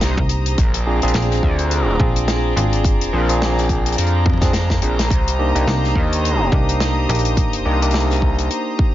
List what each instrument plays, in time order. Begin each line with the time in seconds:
Already playing: tine electric piano A#3 D4 D#4 G4, string section G4 C5 A#5 D#6
0.01 analog synth bass C2, snare, closed hi-hat
0.17 fm bass C2, kick
0.29 closed hi-hat
0.46 closed hi-hat
0.58 analog synth bass A#1, string section G#4 C5 D5 A#5, kick, closed hi-hat
0.74 closed hi-hat
0.87 tine electric piano C4 D4 F4 G#4
1.02 analog synth bass A#1, tine electric piano C4 D4 F4 G#4, closed hi-hat
1.08 closed hi-hat
1.14 fm bass A#1, snare, closed hi-hat
1.22 closed hi-hat
1.31 snare
1.43 analog synth bass D2, kick
1.59 closed hi-hat
1.71 closed hi-hat
2.00 fm bass A#1, tine electric piano C4 D4 F4 G#4, kick
2.16 closed hi-hat
2.28 snare, closed hi-hat
2.56 fm bass G#1, tine electric piano C4 D4 F4 G#4, closed hi-hat
2.73 closed hi-hat
2.84 kick, closed hi-hat
3.01 closed hi-hat
3.13 analog synth bass A#1, tine electric piano C4 D4 F4 G#4
3.29 tine electric piano C4 D4 F4 G#4, closed hi-hat
3.42 snare
3.58 snare
3.69 kick, closed hi-hat
3.86 closed hi-hat
3.92 closed hi-hat
3.98 analog synth bass F2, closed hi-hat
4.07 closed hi-hat
4.26 kick, high tom
4.30 high tom
4.33 high tom
4.38 snare, high tom
4.42 tine electric piano C4 D4 F4 G#4, kick, closed hi-hat
4.53 snare, closed hi-hat
4.70 kick, snare
4.82 analog synth bass A#1, tine electric piano C4 D4 F4 G#4, closed hi-hat
4.99 snare, closed hi-hat
5.10 analog synth bass C2, string section G4 D#6, kick, closed hi-hat
5.28 closed hi-hat
5.39 tine electric piano A#3 D4 D#4 G4
5.55 analog synth bass C2, tine electric piano A#3 D4 D#4 G4, closed hi-hat
5.67 fm bass C2, snare
5.84 snare
5.95 analog synth bass D#2, kick
6.13 closed hi-hat
6.25 closed hi-hat
6.52 fm bass C2, tine electric piano A#3 D4 D#4 G4, kick
6.69 closed hi-hat
6.80 snare, closed hi-hat
7.09 fm bass A#1, tine electric piano A#3 D4 D#4 G4, closed hi-hat
7.15 closed hi-hat
7.19 closed hi-hat
7.25 closed hi-hat
7.37 kick, closed hi-hat
7.53 closed hi-hat
7.65 analog synth bass C2, tine electric piano A#3 D4 D#4 G4
7.82 tine electric piano A#3 D4 D#4 G4, closed hi-hat
7.91 snare, closed hi-hat
8.00 closed hi-hat
8.10 snare
8.22 kick
8.39 closed hi-hat
8.51 closed hi-hat
8.79 kick